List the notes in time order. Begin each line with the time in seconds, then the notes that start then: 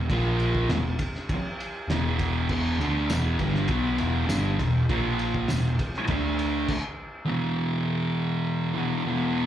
0.10 A#1 A#2 F3 A#3, kick, ride
0.40 ride
0.55 kick
0.69 E1 E2 B2, snare, ride
0.99 kick, ride
1.15 snare
1.29 muted picked electric bass stroke, muted distorted electric guitar stroke, kick, ride
1.60 ride
1.88 E1 E2 B2, snare, ride
1.92 E3
2.19 kick, ride
2.49 E1 E2 B2 E3, kick, crash
2.78 D2 D3 A3, ride
2.83 D4
3.10 E1 E2 B2 E3, snare, ride, tambourine
3.39 G1 G2 D3 G3, kick, ride
3.55 snare
3.68 B1 B2 F#3 B3, kick, ride
3.98 E1 E2 B2 E3, ride
4.26 G2 D3 G3, snare, ride, tambourine
4.31 G1
4.59 E1 E2 B2, kick, ride
4.89 A#1 A#2 F3 A#3, kick, ride
5.19 ride
5.34 kick
5.48 E1 E2 B2, snare, ride, tambourine
5.64 snare
5.79 kick, ride
5.94 snare
6.07 D2 D3 A3 D4, kick, ride
6.39 ride
6.68 kick, crash
7.25 E2 B2
7.31 E3
8.75 B2 E3
8.80 E2
9.04 E2 B2
9.10 E3